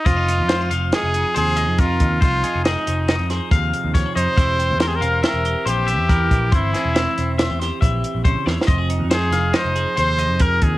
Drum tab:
HH |x--x--x--x--x--x--x--x--x--x--|x--x--x--x--x--x--x--x--x--x--|x--x--x--x--x--x--x--x--x--x--|x--x--x--x--x--x--x--x--x-----|
SD |------o-----o-----------------|------o-----o--o--------o-----|------o-----o-----------------|---o--o-----o--o-----------o-o|
BD |o-----------------------o--o--|o-----------------o-----o-----|o-----------------------o--o--|o-----------------o-----o-----|

HH |x--x--x--x--x--x--x--x--x--x--|
SD |------o--o--o-----------------|
BD |o-----------------------o--o--|